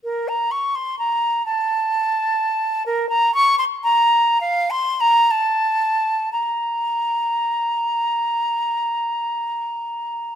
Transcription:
0.04 A#4
0.28 A#5
0.51 C#6
0.75 C6
0.99 A#5
1.46 A5
2.86 A#4
3.09 A#5
3.34 C#6
3.58 C6
3.84 A#5
4.41 F5
4.70 C6
5.00 A#5
5.31 A5
6.32 A#5

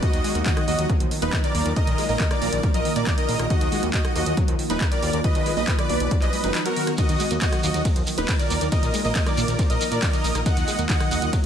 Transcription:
0.03 D#3 F#4 D#5, kick, closed hi-hat
0.13 D#2 D#3, closed hi-hat
0.24 G#3, open hi-hat
0.35 D#2 A#3, closed hi-hat
0.46 D#3 F#4 D#5, kick, clap, closed hi-hat
0.57 D#3, cross-stick, closed hi-hat
0.68 D#2 A#3 F#4 D#5, open hi-hat
0.79 D#2, closed hi-hat
0.89 F#3, kick, closed hi-hat
1.00 D#2 F3, closed hi-hat
1.11 D#3, open hi-hat
1.22 D#1 A#3 D#4 B4, closed hi-hat
1.33 D#3, kick, clap, closed hi-hat
1.44 D#3 A#4 D5, closed hi-hat
1.55 D#2 A#3, open hi-hat
1.66 D#2 D#3, closed hi-hat
1.76 D#3 A#4 D#5, kick, closed hi-hat
1.87 A#1 D#3, closed hi-hat
1.98 G#3, open hi-hat
2.09 A#1 A#3 A#4 D#5, open hi-hat
2.20 D#3, kick, clap, closed hi-hat
2.31 D#3 A#4 D5, cross-stick, closed hi-hat
2.42 A#1 A#3, open hi-hat
2.53 A#1 D#2, closed hi-hat
2.63 F3, kick, closed hi-hat
2.74 A#1 F3 A#4 D#5, closed hi-hat
2.85 D#3, open hi-hat
2.96 A#2 A#3 A#4 D5, closed hi-hat
3.07 D#3, kick, clap, closed hi-hat
3.18 D#3 A#4 D#5, closed hi-hat
3.29 A#1 A#3, open hi-hat
3.39 A#1 D#3, cross-stick, closed hi-hat
3.50 D#3 F#4 D#5, kick, closed hi-hat
3.61 D#2 D#3, closed hi-hat
3.72 G#3, open hi-hat
3.83 D#2 A#3, closed hi-hat
3.94 D#3 F#4 D#5, kick, clap, closed hi-hat
4.05 D#3, cross-stick, closed hi-hat
4.16 D#2 A#3 F#4 D#5, open hi-hat
4.26 D#2, closed hi-hat
4.37 F#3, kick, closed hi-hat
4.48 D#2 F3, closed hi-hat
4.59 D#3, open hi-hat
4.70 D#1 A#3 D#4 B4, closed hi-hat
4.81 D#3, kick, clap, closed hi-hat
4.92 D#3 A#4 D5, closed hi-hat
5.02 D#2 A#3, open hi-hat
5.13 D#2 D#3, closed hi-hat
5.24 D#3 B4 D#5, kick, closed hi-hat
5.35 B1 D#3, closed hi-hat
5.46 G#3, open hi-hat
5.57 B1 A#3 B4 D#5, open hi-hat
5.68 D#3, kick, clap, closed hi-hat
5.79 D#3 B4 D5, cross-stick, closed hi-hat
5.89 B1 A#3, open hi-hat
6.00 B1 D#2, closed hi-hat
6.11 F#3, kick, closed hi-hat
6.22 B1 F3 B4 D#5, clap, closed hi-hat
6.33 G#3, open hi-hat
6.44 F#1 F#3 D#4 B4, closed hi-hat
6.55 F3, clap, closed hi-hat
6.66 F#3 F#4 A#4, closed hi-hat
6.76 D#3, open hi-hat
6.87 D#3, cross-stick, closed hi-hat
6.97 D#3 F#4 D#5, kick, closed hi-hat, ride, shekere
7.09 D#2 D#3, closed hi-hat, shekere
7.19 G#3, open hi-hat, shekere
7.31 D#2 A#3, closed hi-hat, shekere
7.41 D#3 F#4 D#5, kick, clap, closed hi-hat, ride, shekere
7.53 D#3, cross-stick, closed hi-hat, shekere
7.63 D#2 A#3 F#4 D#5, open hi-hat, shekere
7.74 D#2, closed hi-hat, shekere
7.85 F#3, kick, closed hi-hat, ride, shekere
7.96 D#2 F3, closed hi-hat, shekere
8.07 D#3, open hi-hat, shekere
8.18 D#1 A#3 D#4 B4, closed hi-hat, shekere
8.28 D#3, kick, clap, closed hi-hat, ride, shekere
8.39 D#3 A#4 D5, closed hi-hat, shekere
8.50 D#2 A#3, open hi-hat, shekere
8.61 D#2 D#3, closed hi-hat, shekere
8.72 D#3 A#4 D#5, kick, closed hi-hat, ride, shekere
8.83 A#1 D#3, closed hi-hat, shekere
8.94 G#3, open hi-hat, shekere
9.05 A#1 A#3 A#4 D#5, open hi-hat, shekere
9.16 D#3, kick, clap, closed hi-hat, ride, shekere
9.26 D#3 A#4 D5, cross-stick, closed hi-hat, shekere
9.37 A#1 A#3, open hi-hat, shekere
9.48 A#1 D#2, closed hi-hat, shekere
9.59 F3, kick, closed hi-hat, ride, shekere
9.70 A#1 F3 A#4 D#5, closed hi-hat, shekere
9.81 D#3, open hi-hat, shekere
9.91 A#2 A#3 A#4 D5, closed hi-hat, shekere
10.02 D#3, kick, clap, closed hi-hat, ride, shekere
10.13 D#3 A#4 D#5, closed hi-hat, shekere
10.24 A#1 A#3, open hi-hat, shekere
10.35 A#1 D#3, cross-stick, closed hi-hat, shekere
10.46 D#3 D#5 F#5, kick, closed hi-hat, ride, shekere
10.57 D#2 D#3, closed hi-hat, shekere
10.68 G#3, open hi-hat, shekere
10.79 D#2 A#3, closed hi-hat, shekere
10.89 D#3 D#5 F#5, kick, clap, closed hi-hat, ride, shekere
11.00 D#3, cross-stick, closed hi-hat, shekere
11.11 D#2 A#3 D#5 F#5, open hi-hat, shekere
11.22 D#2, closed hi-hat, shekere
11.33 F#3, kick, closed hi-hat, ride, shekere

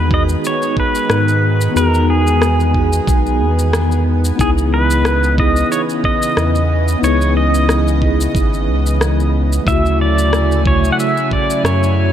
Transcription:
Already playing: E2 D#3 G#3 B3 D#4 F#4 G#4
0.07 B3 D#4, kick
0.12 F#4 G#4 D#5
0.29 shaker
0.45 C#5, shaker
0.62 shaker
0.77 B4, kick
0.95 shaker
1.10 G#2, cross-stick, shaker
1.28 shaker
1.61 shaker
1.71 B3 D#4
1.76 E2 F#4 G#4 A#4, shaker
1.94 shaker
2.10 G#4
2.27 shaker
2.42 cross-stick, shaker
2.60 shaker
2.71 B3 D#4, kick
2.76 F#4 G#4
2.93 shaker
3.07 B1, kick, shaker
3.26 shaker
3.40 E2
3.59 shaker
3.73 cross-stick, shaker
3.92 shaker
4.25 shaker
4.35 C#3 E3 B3 D#4 D#5
4.39 C#2 E4 G#4, kick, shaker
4.43 G#4
4.58 shaker
4.74 B4
4.91 shaker
5.05 cross-stick, shaker
5.24 shaker
5.34 B3 D#4
5.38 E4 G#4 D#5, kick
5.56 shaker
5.72 C#5, shaker
5.89 shaker
6.04 D#5, kick
6.22 shaker
6.37 E2, cross-stick, shaker
6.55 shaker
6.88 shaker
6.99 C#2 B3 D#4
7.04 E4 G#4 C#5, shaker
7.21 shaker
7.37 D#5
7.54 shaker
7.69 cross-stick, shaker
7.88 shaker
7.98 B3 D#4
8.02 E4 G#4, kick
8.21 shaker
8.35 G#1, kick, shaker
8.54 shaker
8.68 C#2
8.86 shaker
9.01 cross-stick, shaker
9.20 shaker
9.53 shaker
9.63 D2 C#3 F#3 A3 E4 G#5, kick
9.68 E4 F#4 E5, shaker
9.86 shaker
10.01 D5
10.18 shaker
10.33 cross-stick, shaker
10.52 shaker
10.62 C#3 A3, kick
10.67 E4 F#4 C#5
10.85 shaker
10.92 F#5
11.00 E5, shaker
11.17 shaker
11.31 D5, kick
11.50 shaker
11.64 F#2 C#5, cross-stick, shaker
11.83 shaker

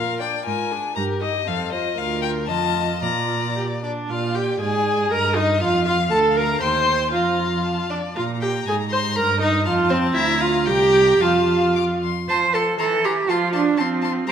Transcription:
Already playing: A#2 F4 A#4 F5
0.20 D4 D5 G5
0.45 G#2 F4 A#4 G#5
0.71 D4 G#4
0.95 G2 G4 A#4 A#5
1.21 D#4 G4 D#5
1.46 F2 C4 A4 F5
1.72 F4 C5 D#5
1.97 D2 F4 A#4 F5
2.22 G5
2.47 F2 F4 D#5 A5
3.02 A#2 F4 D5 A#5
3.56 G4
3.82 D4 D5
4.09 A#2 F4 D5 F5
4.35 G4 G5
4.60 G#2 G#4 G#5
5.11 G2 A#4 D#5 A#5
5.36 D#4 D#5
5.60 F2 F4 F5
5.85 F4 F5
6.11 D2 A4 A5
6.36 A#4 A#5
6.61 D#2 C5 G5 C6
7.12 F2 F4 F5 A#5
7.65 A5
7.90 D4 D5
8.15 A#2 F4 F5 A#5
8.41 G4 G5
8.66 G#2 G#4 G#5
8.91 C5 C6
9.16 G2 A#4 A#5
9.40 D#4 D#5
9.65 F2 F4 F5 A5
9.90 C4 C5
10.14 D2 E4 E5 A#5
10.40 F4 F5
10.66 C2 G4 G5 A#5
11.20 F2 F4 F5 A5
11.75 D6
12.03 C6
12.29 F3 C5 A5 C6
12.54 A4 A5 C6
12.79 E3 A4 A#5 C6
13.04 G4 A#5 C6
13.29 F3 F4 A5 C6
13.53 D4 A5 C6
13.77 F3 C4 A5 C6
14.02 A5 C6
14.27 G3 C5 A#5

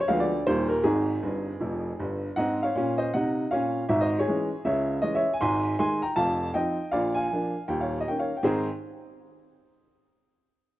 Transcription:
0.00 C#5
0.08 D2 D3 F3 G#3 B3 F5
0.20 D5
0.46 D#1 D#2 D#3 G3 A#3 C5
0.68 A#4
0.84 G#1 G#2 C4 D#4 G#4
1.23 G1 G2
1.61 F1 F2
2.00 G1 G2
2.36 G#2 C4 D#5 F#5
2.63 C#5 F5
2.75 A#2 C#4
2.98 C5 D#5
3.14 C3 D#4 D#5 F#5
3.51 A#2 C#4 C#5 F5
3.89 G#1 G#2 E5
4.01 C5 D#5
4.19 G#4 C#5
4.28 E3 G#3 C#4
4.65 C#2 C#3 C#5 E5
5.02 E3 G#3 C#4 D#5
5.15 C#5 E5
5.33 G#5
5.41 G#1 G#2 G#5 C6
5.79 D#3 G#3 D#4 G#5 C6
6.02 G5 A#5
6.16 F1 F2 F5 A5
6.54 F3 C4 D#4 D#5 G5
6.91 A#1 A#2 D5 F5
7.14 F5 G#5
7.32 F3 A#3 D4
7.68 D#1 D#2 G5
7.81 C#5 F5
8.00 D#5
8.08 D#3 A#3 C#4 G5
8.19 C#5 F5
8.37 G5
8.43 G#2 D#3 C4 D#4 G#4 C5 G#5

